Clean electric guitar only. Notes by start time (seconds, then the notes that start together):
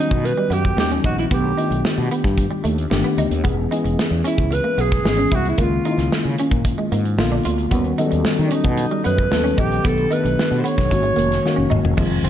0.25 muted clean electric guitar stroke
0.37 G3
0.50 B3
0.77 muted clean electric guitar stroke
0.91 C#4
1.05 D#4
1.31 B3
1.57 D#4
1.71 muted clean electric guitar stroke
2.11 B3
2.38 muted clean electric guitar stroke
2.51 G3
2.64 A3
2.90 muted clean electric guitar stroke
3.04 B3
3.18 D#4
3.44 B3
3.71 D#4
3.84 muted clean electric guitar stroke
4.24 C#4
4.51 muted clean electric guitar stroke
4.64 A#3
4.78 B3
5.04 muted clean electric guitar stroke
5.18 C#4
5.32 E4
5.58 A#3
5.86 D#4
5.99 muted clean electric guitar stroke
6.39 C#4
6.65 muted clean electric guitar stroke
6.78 G#3
6.92 A#3
7.19 muted clean electric guitar stroke
7.32 D4
7.45 F4
7.71 B3
7.98 D#4
8.11 muted clean electric guitar stroke
8.52 C#4
8.78 muted clean electric guitar stroke
8.91 G3
9.04 B3
9.31 muted clean electric guitar stroke
9.44 C#4
9.58 D#4
9.84 B3
10.11 D#4
10.24 muted clean electric guitar stroke
10.64 B3
10.90 muted clean electric guitar stroke
11.03 G#3
11.16 A#3
11.43 muted clean electric guitar stroke
11.56 C#4
11.70 D#4
11.97 G#3
12.24 C4